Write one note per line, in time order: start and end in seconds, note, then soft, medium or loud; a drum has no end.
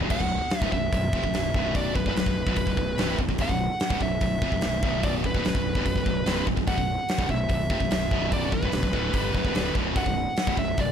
0.01 0.10 C1 medium
0.01 0.10 C2 medium
0.01 0.11 G2 medium
0.10 0.20 B0 medium
0.10 0.20 B1 loud
0.10 0.21 F#2 medium
0.10 0.60 F#5 loud
0.10 kick medium
0.10 crash loud
0.20 0.40 B0 medium
0.20 0.38 B1 medium
0.20 0.38 F#2 medium
0.20 kick medium
0.50 snare loud
0.50 open hi-hat medium
0.60 0.71 C1 medium
0.60 0.72 C2 medium
0.60 0.72 G2 loud
0.60 0.72 E5 loud
0.60 kick loud
0.72 0.91 B0 medium
0.72 0.89 B1 medium
0.72 0.89 F#2 medium
0.72 1.78 E5 loud
0.72 kick medium
0.92 1.12 B0 medium
0.92 1.10 B1 medium
0.92 1.10 F#2 medium
0.92 kick medium
0.92 open hi-hat medium
1.13 1.23 F1 medium
1.13 1.24 F2 medium
1.13 1.24 C3 medium
1.13 kick loud
1.24 1.32 B0 medium
1.24 1.34 B1 medium
1.24 1.35 F#2 medium
1.24 kick medium
1.32 1.52 B0 medium
1.32 1.51 B1 medium
1.32 1.51 F#2 medium
1.32 snare loud
1.32 open hi-hat medium
1.54 1.93 B0 medium
1.54 1.96 B1 medium
1.54 1.96 F#2 medium
1.54 1.96 B2 loud
1.54 kick loud
1.75 1.95 D5 loud
1.75 kick loud
1.75 open hi-hat medium
1.95 2.05 B0 medium
1.95 2.06 B1 medium
1.95 2.07 F#2 medium
1.95 3.15 B4 medium
1.95 kick loud
2.06 2.14 C1 medium
2.06 2.16 C2 medium
2.06 2.16 G2 medium
2.06 kick medium
2.15 2.25 B0 medium
2.15 2.26 B1 medium
2.15 2.26 F#2 medium
2.15 snare loud
2.15 open hi-hat medium
2.26 2.45 B0 medium
2.26 2.43 B1 medium
2.26 2.43 F#2 medium
2.26 kick medium
2.47 2.56 B0 medium
2.47 2.56 B1 medium
2.47 2.57 F#2 loud
2.47 kick loud
2.56 2.67 B0 medium
2.56 2.66 B1 medium
2.56 2.66 F#2 medium
2.56 kick medium
2.56 open hi-hat medium
2.67 2.76 B0 medium
2.67 2.75 B1 medium
2.67 2.76 F#2 medium
2.67 kick medium
2.77 2.96 B0 medium
2.77 2.94 B1 medium
2.77 2.94 F#2 medium
2.77 kick medium
2.98 3.18 C1 loud
2.98 3.18 C2 loud
2.98 3.18 G2 loud
2.98 3.19 C3 medium
2.98 snare loud
2.98 open hi-hat medium
3.19 3.28 B0 medium
3.19 3.28 B1 medium
3.19 3.29 F#2 medium
3.19 kick medium
3.29 3.38 B0 medium
3.29 3.38 B1 medium
3.29 3.39 F#2 medium
3.29 kick medium
3.38 3.48 B0 medium
3.38 3.49 B1 medium
3.38 3.49 F#2 loud
3.38 4.02 F#5 loud
3.38 kick medium
3.38 open hi-hat medium
3.49 3.69 B0 medium
3.49 3.66 B1 medium
3.49 3.67 F#2 medium
3.49 kick medium
3.80 snare loud
3.80 open hi-hat soft
3.90 4.00 C1 medium
3.90 4.00 C2 medium
3.90 4.00 G2 loud
3.90 kick loud
4.01 4.20 B0 medium
4.01 4.18 B1 medium
4.01 4.18 F#2 medium
4.01 5.07 E5 medium
4.01 kick medium
4.21 4.40 B0 medium
4.21 4.38 B1 medium
4.21 4.38 F#2 medium
4.21 kick medium
4.21 open hi-hat medium
4.42 4.51 F1 medium
4.42 4.52 F2 medium
4.42 4.52 C3 loud
4.42 kick loud
4.52 4.61 B0 medium
4.52 4.62 B1 medium
4.52 4.63 F#2 medium
4.52 kick medium
4.61 4.82 B0 medium
4.61 4.79 B1 medium
4.61 4.80 F#2 medium
4.61 snare loud
4.61 open hi-hat medium
4.83 5.21 B0 medium
4.83 5.23 B1 loud
4.83 5.23 F#2 medium
4.83 5.24 B2 medium
4.83 kick loud
5.03 5.10 D5 loud
5.03 kick loud
5.03 open hi-hat medium
5.24 5.34 B0 medium
5.24 5.34 B1 medium
5.24 5.34 F#2 medium
5.24 6.44 B4 medium
5.24 kick medium
5.34 5.44 C1 loud
5.34 5.44 C2 medium
5.34 5.44 G2 loud
5.34 kick medium
5.44 5.54 B0 medium
5.44 5.54 B1 medium
5.44 5.55 F#2 medium
5.44 snare loud
5.44 open hi-hat medium
5.54 5.74 B0 medium
5.54 5.72 B1 medium
5.54 5.72 F#2 medium
5.54 kick loud
5.75 5.85 B0 medium
5.75 5.86 B1 medium
5.75 5.86 F#2 medium
5.75 kick loud
5.86 5.95 B0 medium
5.86 5.96 B1 medium
5.86 5.97 F#2 medium
5.86 kick medium
5.86 open hi-hat medium
5.96 6.05 B0 medium
5.96 6.05 B1 medium
5.96 6.06 F#2 medium
5.96 kick medium
6.06 6.25 B0 medium
6.06 6.23 B1 medium
6.06 6.23 F#2 medium
6.06 kick medium
6.26 6.46 C1 medium
6.26 6.46 C2 medium
6.26 6.47 G2 loud
6.26 6.47 C3 medium
6.26 snare loud
6.26 open hi-hat medium
6.46 6.56 B0 medium
6.46 6.55 B1 medium
6.46 6.56 F#2 medium
6.46 kick medium
6.56 6.67 B0 medium
6.56 6.66 B1 medium
6.56 6.66 F#2 medium
6.56 kick medium
6.67 6.77 B0 medium
6.67 6.76 B1 loud
6.67 6.77 F#2 loud
6.67 7.30 F#5 loud
6.67 kick loud
6.67 open hi-hat medium
6.77 6.97 B0 medium
6.77 6.94 B1 medium
6.77 6.95 F#2 medium
6.77 kick medium
7.09 snare loud
7.09 open hi-hat medium
7.18 7.29 C1 medium
7.18 7.28 C2 medium
7.18 7.28 G2 loud
7.18 kick loud
7.29 7.49 B0 medium
7.29 7.46 B1 medium
7.29 7.46 F#2 medium
7.29 8.29 E5 loud
7.29 kick medium
7.49 7.69 B0 medium
7.49 7.66 B1 medium
7.49 7.66 F#2 medium
7.49 kick medium
7.49 open hi-hat medium
7.70 7.80 F1 medium
7.70 7.80 F2 medium
7.70 7.80 C3 loud
7.70 kick loud
7.80 7.90 B0 medium
7.80 7.90 B1 medium
7.80 7.91 F#2 medium
7.80 kick medium
7.90 8.10 B0 medium
7.90 8.08 B1 medium
7.90 8.08 F#2 medium
7.90 snare loud
7.90 open hi-hat medium
8.11 8.50 B0 medium
8.11 8.52 B1 medium
8.11 8.52 F#2 medium
8.11 8.53 B2 loud
8.11 kick medium
8.32 8.53 D5 medium
8.32 kick loud
8.32 open hi-hat medium
8.52 8.62 B0 medium
8.52 8.63 B1 medium
8.52 8.63 F#2 medium
8.52 9.73 B4 medium
8.52 kick medium
8.63 8.72 C1 medium
8.63 8.72 C2 medium
8.63 8.72 G2 loud
8.63 kick medium
8.72 8.83 B0 medium
8.72 8.82 B1 medium
8.72 8.83 F#2 medium
8.72 snare loud
8.72 open hi-hat medium
8.83 8.93 B0 medium
8.83 8.93 B1 medium
8.83 8.93 F#2 medium
8.83 kick medium
8.93 9.13 D1 medium
8.93 9.14 D2 medium
8.93 9.14 A2 medium
8.93 9.13 D3 loud
8.93 kick medium
9.13 9.33 G1 loud
9.13 9.34 G2 medium
9.13 9.34 D3 medium
9.13 9.35 G3 medium
9.13 kick loud
9.13 open hi-hat medium
9.34 9.44 F#1 medium
9.34 9.44 F#2 medium
9.34 9.45 C#3 medium
9.34 kick loud
9.44 9.54 B0 medium
9.44 9.54 B1 medium
9.44 9.55 F#2 loud
9.44 kick medium
9.54 9.75 D1 loud
9.54 9.75 D2 loud
9.54 9.76 A2 medium
9.54 9.76 D3 loud
9.54 snare loud
9.54 open hi-hat medium
9.75 9.95 B0 medium
9.75 9.95 B1 loud
9.75 9.95 F#2 medium
9.75 9.96 B2 loud
9.75 kick loud
9.96 10.05 B0 medium
9.96 10.05 B1 loud
9.96 10.06 F#2 loud
9.96 10.58 F#5 loud
9.96 kick loud
9.96 open hi-hat medium
10.06 10.26 B0 medium
10.06 10.23 B1 medium
10.06 10.24 F#2 medium
10.06 kick medium
10.37 snare loud
10.37 open hi-hat medium
10.47 10.56 C1 loud
10.47 10.58 C2 medium
10.47 10.58 G2 medium
10.47 kick loud
10.57 10.77 B0 medium
10.57 10.75 B1 medium
10.57 10.75 F#2 medium
10.57 10.80 E5 loud
10.57 kick medium
10.78 10.92 B0 medium
10.78 10.92 B1 medium
10.78 10.92 F#2 medium
10.78 10.92 D5 loud
10.78 kick loud
10.78 open hi-hat medium